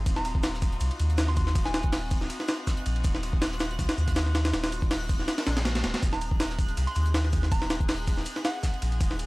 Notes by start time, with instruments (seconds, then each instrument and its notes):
Already playing: string section C4 D#4 F4
0.06 sub bass D#1, string section F#4, synth texture F#6, kick, ride, shaker
0.16 synth bell A#5, snare
0.25 ride, shaker
0.35 kick
0.43 snare, ride, shaker
0.54 snare
0.62 kick, ride, shaker
0.72 closed hi-hat
0.80 sub bass C2, ride, shaker
0.91 ride
0.99 sub bass D#2, ride, shaker
1.10 closed hi-hat
1.18 snare, ride, shaker
1.28 synth bell C6, snare
1.36 synth bell C6, kick, ride, shaker
1.46 snare
1.55 sub bass D#1, kick, ride, shaker
1.65 synth bell G#5, snare
1.74 snare, ride, shaker
1.83 kick, closed hi-hat
1.92 snare, open hi-hat, ride
2.11 kick, ride, shaker
2.21 snare
2.30 ride, shaker
2.40 snare
2.48 snare, ride, shaker
2.67 kick, snare, ride, shaker
2.77 closed hi-hat
2.86 sub bass A#1, ride, shaker
2.96 ride
3.04 sub bass D#1, kick, ride, shaker
3.15 snare
3.23 ride, shaker
3.33 kick
3.42 snare, ride, shaker
3.52 snare
3.59 snare, ride, shaker
3.71 closed hi-hat
3.79 sub bass C2, kick, ride, shaker
3.89 snare, ride
3.97 sub bass D#2, shaker
4.08 kick, closed hi-hat, ride
4.16 snare, ride, shaker
4.26 snare
4.35 snare, ride, shaker
4.45 snare, ride
4.53 sub bass D#1, snare, ride, shaker
4.63 snare, ride
4.72 ride, shaker
4.82 kick, closed hi-hat
4.91 snare, open hi-hat, ride
5.09 kick, ride, shaker
5.19 snare
5.28 snare, ride, shaker
5.38 snare, ride
5.47 sub bass A#1, snare, ride, shaker
5.57 snare, ride
5.65 snare, ride, shaker
5.75 snare, closed hi-hat, ride
5.84 sub bass D#1, snare, ride, shaker
5.94 snare, ride
6.02 sub bass D#1, string section G#4, kick, ride, shaker
6.13 synth bell A#5, snare
6.21 ride, shaker
6.31 kick
6.40 snare, ride, shaker
6.49 snare
6.59 kick, ride, shaker
6.68 closed hi-hat
6.77 sub bass C2, ride, shaker
6.87 synth bell C6, ride
6.95 sub bass D#2, synth bell C6, ride, shaker
7.06 closed hi-hat
7.14 snare, ride, shaker
7.24 snare
7.33 kick, ride, shaker
7.43 snare
7.51 sub bass D#1, synth bell A#5, kick, ride, shaker
7.61 snare
7.70 snare, ride, shaker
7.80 kick, closed hi-hat
7.88 snare, open hi-hat, ride
8.07 kick, ride, shaker
8.17 snare
8.25 ride, shaker
8.36 snare
8.45 synth bell F#5, snare, ride, shaker
8.63 kick, snare, ride, shaker
8.74 closed hi-hat
8.82 sub bass A#1, ride, shaker
8.92 ride
9.01 sub bass D#1, kick, ride, shaker
9.11 snare
9.19 ride, shaker